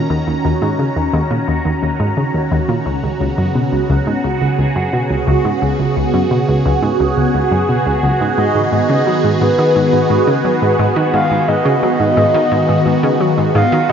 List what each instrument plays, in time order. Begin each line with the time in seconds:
Already playing: analog synth pad D#3 C#4 F#4 A#5
0.10 synth arpeggio sound D#2
0.28 synth arpeggio sound D#2
0.45 synth arpeggio sound D#2
0.62 synth arpeggio sound G#2
0.79 synth arpeggio sound C#3
0.96 synth arpeggio sound D#2
1.13 synth arpeggio sound D#2
1.31 synth arpeggio sound A#2
1.48 synth arpeggio sound D#2
1.65 synth arpeggio sound D#2
1.83 synth arpeggio sound D#2
2.00 synth arpeggio sound G#2
2.17 synth arpeggio sound C#3
2.34 synth arpeggio sound D#2
2.52 synth arpeggio sound D#2
2.69 synth arpeggio sound A#2
2.86 synth arpeggio sound C#2, analog synth pad C#3
3.03 synth arpeggio sound C#2
3.15 analog synth pad B3
3.21 synth arpeggio sound C#2
3.38 synth arpeggio sound F#2
3.55 synth arpeggio sound B2
3.72 synth arpeggio sound C#2
3.90 synth arpeggio sound C#2
4.07 synth arpeggio sound G#2
4.12 analog synth pad G#4
4.24 synth arpeggio sound C#2
4.41 synth arpeggio sound C#2
4.59 synth arpeggio sound C#2
4.76 synth arpeggio sound F#2
4.93 synth arpeggio sound B2
5.10 synth arpeggio sound C#2
5.27 synth arpeggio sound C#2
5.45 synth arpeggio sound G#2
5.62 synth arpeggio sound C#2
5.79 synth arpeggio sound C#2
5.97 synth arpeggio sound C#2
6.14 synth arpeggio sound F#2
6.31 synth arpeggio sound B2
6.48 synth arpeggio sound C#2
6.66 synth arpeggio sound C#2
6.83 synth arpeggio sound G#2
7.00 synth arpeggio sound C#2
7.17 synth arpeggio sound C#2
7.34 synth arpeggio sound C#2
7.52 synth arpeggio sound F#2
7.69 synth arpeggio sound B2
7.86 synth arpeggio sound C#2
8.03 synth arpeggio sound C#2
8.21 synth arpeggio sound G#2
8.38 synth arpeggio sound G#2, analog synth pad D#3, soft synth lead D#5
8.55 synth arpeggio sound G#2
8.72 synth arpeggio sound G#2, soft synth lead D#5
8.90 synth arpeggio sound C#3
9.07 synth arpeggio sound F#3
9.24 synth arpeggio sound G#2
9.41 synth arpeggio sound G#2, soft synth lead B4
9.59 synth arpeggio sound D#3
9.76 synth arpeggio sound G#2
9.93 synth arpeggio sound G#2
10.10 synth arpeggio sound G#2
10.27 synth arpeggio sound C#3
10.45 synth arpeggio sound F#3
10.62 synth arpeggio sound G#2
10.79 synth arpeggio sound G#2
10.96 synth arpeggio sound D#3
11.14 synth arpeggio sound G#2, soft synth lead F5
11.31 synth arpeggio sound G#2
11.48 synth arpeggio sound G#2, soft synth lead D#5
11.65 synth arpeggio sound C#3
11.83 synth arpeggio sound F#3, soft synth lead D#5
12.00 synth arpeggio sound G#2
12.17 synth arpeggio sound G#2
12.34 synth arpeggio sound D#3
12.52 synth arpeggio sound G#2
12.69 synth arpeggio sound G#2
12.86 synth arpeggio sound G#2
13.03 synth arpeggio sound C#3
13.20 synth arpeggio sound F#3
13.38 synth arpeggio sound G#2
13.55 synth arpeggio sound G#2, soft synth lead F5
13.72 synth arpeggio sound D#3